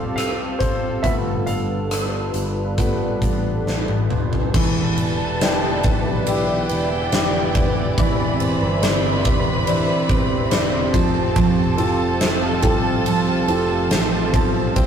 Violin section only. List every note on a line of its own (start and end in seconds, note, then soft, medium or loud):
4.55 6.24 A4 medium
4.55 6.24 A5 medium
6.27 7.94 G4 medium
6.27 7.94 G5 medium
7.98 10.91 B4 medium
7.98 10.91 B5 medium
10.94 14.73 A4 medium
10.94 14.73 A5 medium
14.76 14.87 G4 medium
14.76 14.87 G5 medium